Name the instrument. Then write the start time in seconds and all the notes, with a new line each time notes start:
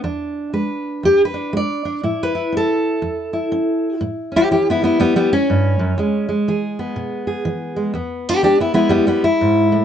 steel-string acoustic guitar
0.04 E2 D4
0.53 G#3 B4
1.03 E2 G4
1.25 B4
1.34 D4
1.53 G#3 D5
1.85 D4
2.03 A2 E4
2.23 B4
2.35 E4
2.52 C#4
2.57 A4
3.02 E2
3.33 E4
3.52 C#4
4.01 A2
4.32 C#4
4.36 E4 G4
4.51 E3 E4 G4
4.70 B3 E4
4.82 G3 B3 E4
5.00 E2 G3 B3
5.16 G3 B3
5.33 C#4
5.50 G2
5.79 F#2
5.98 E2 G#3
6.29 G#3
6.48 E3 G#4
6.79 B3
6.96 B2
7.27 G#4
7.45 E3
7.76 G#3
7.94 E2 B3
8.29 D4 G4
8.43 G#3 D4 G4
8.60 B3 E4
8.74 G#3 B3 E4
8.89 E2 G3 B3
9.07 G3 B3
9.24 E4
9.41 G#2
9.72 A2